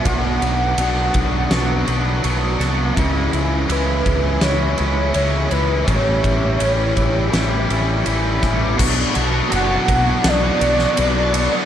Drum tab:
CC |----------------|----------------|----------------|x---------------|
RD |x-x-x-x-x-x-x-x-|x-x-x-x-x-x-x-x-|x-x-x-x-x-x-x-x-|--x-x-x-x-x-x-x-|
SD |--------o-----o-|--------o-------|--------o-----o-|--------o--o----|
BD |o-----o---------|o-----o---------|o-o---o-------o-|o-----o---------|